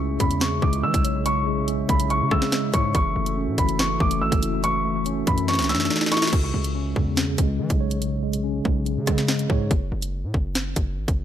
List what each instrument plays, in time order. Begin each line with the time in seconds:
Already playing: 808-style bass C#2, tine electric piano C#3 G#3, glass harmonica C#4 E4 G#4 E5
0.00 tine electric piano C#4
0.20 808-style bass E2, tine electric piano C#3, grand piano B5, kick, closed hi-hat
0.31 closed hi-hat
0.41 tine electric piano C#3, grand piano C#6, snare
0.62 808-style bass C#2, tine electric piano G#3, grand piano D6, kick
0.73 closed hi-hat
0.83 808-style bass E3, tine electric piano G#3, grand piano E6
0.94 808-style bass B1, kick, closed hi-hat
1.04 tine electric piano C#5, closed hi-hat
1.26 tine electric piano C#3, grand piano C#6, closed hi-hat
1.47 tine electric piano G#3
1.68 tine electric piano C#4, closed hi-hat
1.89 808-style bass B1, tine electric piano C#3, grand piano B5, kick, closed hi-hat
2.00 closed hi-hat
2.10 tine electric piano C#3, grand piano C#6, closed hi-hat
2.21 808-style bass C#3
2.31 808-style bass C#3, tine electric piano G#3, grand piano E6, kick, cross-stick
2.42 snare
2.52 tine electric piano G#3, snare
2.74 808-style bass G#2, tine electric piano C#5, grand piano C#6, kick, closed hi-hat
2.95 808-style bass F#1, tine electric piano E3, glass harmonica F#4 A4, grand piano C#6, kick, closed hi-hat
3.16 808-style bass F#1, tine electric piano A3
3.26 closed hi-hat
3.37 tine electric piano C#4
3.48 808-style bass A2
3.58 808-style bass F#1, tine electric piano E3, grand piano B5, kick, closed hi-hat
3.69 closed hi-hat
3.79 tine electric piano E3, grand piano C#6, snare
4.00 808-style bass F#1, tine electric piano A3, grand piano D6, kick
4.11 closed hi-hat
4.21 808-style bass G#1, tine electric piano A3, grand piano E6
4.32 808-style bass F#1, kick, closed hi-hat
4.42 tine electric piano E4, closed hi-hat
4.64 tine electric piano E3, grand piano C#6, closed hi-hat
4.85 tine electric piano A3
5.06 tine electric piano C#4, closed hi-hat
5.27 808-style bass F#2, tine electric piano E3, grand piano B5, kick, closed hi-hat
5.38 closed hi-hat
5.48 tine electric piano E3, grand piano C#6, snare, closed hi-hat
5.53 snare, closed hi-hat
5.59 808-style bass C#2, snare, closed hi-hat
5.64 snare
5.69 tine electric piano A3, grand piano E6, snare
5.75 808-style bass F#2, snare
5.80 snare
5.85 snare
5.90 tine electric piano A3, snare
5.96 snare
6.01 snare
6.06 snare
6.12 tine electric piano E4, grand piano C#6, snare, closed hi-hat
6.17 snare
6.22 snare
6.27 snare
6.33 808-style bass C#2, tine electric piano C#3, kick, closed hi-hat, crash
6.54 808-style bass C#2, tine electric piano G#3
6.64 closed hi-hat
6.75 tine electric piano C#4
6.96 808-style bass E2, tine electric piano C#3, kick
7.17 tine electric piano C#3, snare, closed hi-hat
7.38 808-style bass C#2, tine electric piano G#3, kick, closed hi-hat
7.59 808-style bass E3, tine electric piano G#3
7.70 808-style bass B1, kick, closed hi-hat
7.81 tine electric piano C#5
7.91 closed hi-hat
8.02 tine electric piano C#3, closed hi-hat
8.23 tine electric piano G#3
8.33 closed hi-hat
8.44 tine electric piano C#4
8.65 808-style bass B1, tine electric piano C#3, kick
8.86 tine electric piano C#3, closed hi-hat
8.97 808-style bass C#3
9.07 808-style bass C#3, tine electric piano G#3, kick, cross-stick, closed hi-hat
9.18 snare, closed hi-hat
9.28 tine electric piano G#3, snare
9.39 closed hi-hat
9.50 808-style bass G#2, tine electric piano C#5, kick
9.71 808-style bass F#1, kick, closed hi-hat
9.92 808-style bass F#1
10.02 closed hi-hat
10.24 808-style bass A2
10.34 808-style bass F#1, kick
10.55 snare, closed hi-hat
10.76 808-style bass F#1, kick, closed hi-hat
10.97 808-style bass G#1
11.08 808-style bass F#1, kick, closed hi-hat